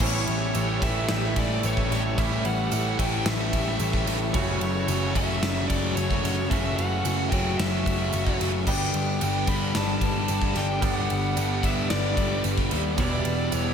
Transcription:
0.00 A1 A2 E3 G3 A3 C#4 E4 G4 C#5 E5 A5 C#6, kick, crash
0.27 A1 G3 C#4 G4, ride
0.55 A1 A2 E3 G3 A3 C#4 G4, ride, tambourine
0.82 A1 A2 E3 G3 A3 C#4 G4 E5, kick, ride
1.09 A1 A2 E3 A3, snare, ride
1.36 A1 G3 C#4 G4 D5, kick, ride
1.63 A1 A2 E3 G3 A3 C#4 G4 C#5, ride, tambourine
1.77 kick
1.90 A1 A2 E3 A3, snare, ride
2.18 A1 A2 E3 G3 A3 C#4 E4 G4 E5, kick, ride
2.45 A1 G3 C#4 G4 F#5, ride
2.72 A1 A2 E3 G3 A3 C#4 G4, ride, tambourine
2.99 A1 A2 E3 G3 A3 C#4 G4 G5, kick, ride
3.26 A1 A2 E3 A3 E5, snare, ride
3.53 A1 G3 C#4 G4, kick, ride
3.79 A1 A2 E3 G3 A3 C#4 G4, ride, tambourine
3.93 kick
4.07 A1 A2 E3 A3, snare, ride
4.34 F#1 F#2 C#3 E3 F#3 A3 C#4 F#4 C#5 C#6, kick, ride
4.60 F#1 F#3 A3 C#4 F#4, ride
4.87 F#1 F#2 C#3 F#3 A3 C#4 F#4, ride, tambourine
5.15 F#1 F#2 C#3 F#3 A3 C#4 F#4 E5, kick, ride
5.41 F#1 F#2 C#3 F#3, snare, ride
5.68 F#1 A3 C#4 F#4 D5, kick, ride
5.72 F#3
5.96 F#1 F#2 C#3 F#3 A3 C#4 F#4 C#5, ride, tambourine
6.11 kick
6.23 F#1 F#2 C#3 F#3, snare, ride
6.50 F#1 F#2 C#3 E3 F#3 A3 C#4 F#4 E5, kick, ride
6.77 F#1 F#3 A3 C#4 F#4 F#5, ride
7.05 F#1 F#2 C#3 F#3 A3 C#4 F#4, ride, tambourine
7.30 F#1 F#2 C#3 C#4 F#4 G5, kick, ride
7.34 F#3 A3
7.58 F#1 F#2 C#3 F#3 E5, snare, ride
7.86 F#1 F#3 A3 C#4 F#4, kick, ride
8.12 F#1 F#2 C#3 F#3 A3 C#4 F#4, ride, tambourine
8.27 kick
8.40 F#1 F#2 C#3 F#3, snare, ride
8.67 G1 G2 D3 G3 B3 D4 G4 D5 G5 B5 D6, kick, crash
8.94 G1 G3 B3 D4 G4, ride
9.21 G1 G2 D3 G3 B3 D4 G4, ride, tambourine
9.47 G1 G2 D3 G3 B3 D4 G4 B5, kick, ride
9.75 G1 G2 D3 G3 A5, snare, ride
10.01 G1 G3 B3 D4 G4, kick, ride
10.27 G1 G2 D3 G3 B3 D4 G4, ride, tambourine
10.42 kick
10.55 G1 G2 D3 G3 G5, snare, ride
10.81 G1 G2 D3 G3 B3 D4 G4 G5, kick, ride
10.94 F#5
11.09 G1 G3 B3 D4 G4, ride
11.35 G1 G2 D3 G3 B3 D4 G4, ride, tambourine
11.62 G1 G2 D3 G3 B3 D4 G4 E5, kick, ride
11.90 G1 G2 D3 G3 D5, snare, ride
12.16 G1 G3 B3 D4 G4, kick, ride
12.43 G1 G2 D3 G3 B3 D4 G4, ride, tambourine
12.58 kick
12.71 D#2 G2 D3 G3, ride
12.98 E1 E2 B2 E3 G3 B3 D4 E4 G4 D5 E5, kick, ride
13.24 E1 E3 G3 B3 G4, ride
13.52 E1 E2 B2 E3 G3 B3 G4, ride, tambourine
13.57 C#5

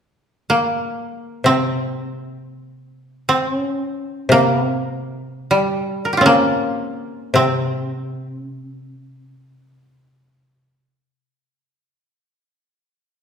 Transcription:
0.50 A#3
1.44 C3 C4
3.29 C4
3.53 C#4
4.29 C3 A#3
4.53 B3
4.66 C4
5.51 G3
6.05 A#4
6.13 G4
6.17 C4 C#4 F4
6.26 A#3
7.34 C3 C4
8.39 C#4
8.60 C4
8.95 C#4
9.16 C4

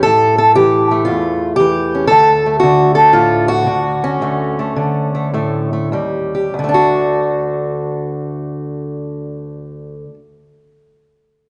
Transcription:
0.03 A2 A4
0.38 A4
0.55 E3 G4
0.91 A3
1.05 E2 F4
1.56 E3 G4
1.95 C#4
2.07 D2 A4
2.46 A3
2.60 D3 F#4
2.95 A4
3.13 A2 F4
3.48 F#4
3.67 D3
4.04 C#4
4.21 D2 A3
4.59 A3
4.76 D3
5.15 A3
5.34 A2 A3
5.73 A3
5.92 D#2 G3
6.35 G4
6.54 D2
6.59 D3
6.64 A3
6.69 D4
6.74 F#4

